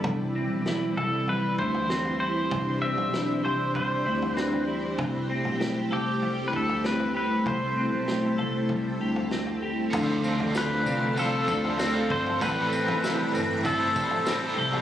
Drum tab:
CC |----------------|----------------|----------------|----------------|
TB |----------------|----------------|----------------|----------------|
SD |----o-------o---|----o-------o---|----o-------o---|----o-------o---|
FT |o-----o-o--o-o--|o--o--o-o--o-o--|o--o--o-o--o-o--|o-----o-o--o-o--|
BD |o---------o-----|o-------o-------|o---------o-----|o-------o-------|

CC |x---------------|----------------|
TB |x-x-x-x-x-x-x---|x-x-x-x-x-x-x---|
SD |----o-------o---|----o-------o---|
FT |o--o----o--o---o|o--o----o--o---o|
BD |o---------o---o-|o-------o-o-----|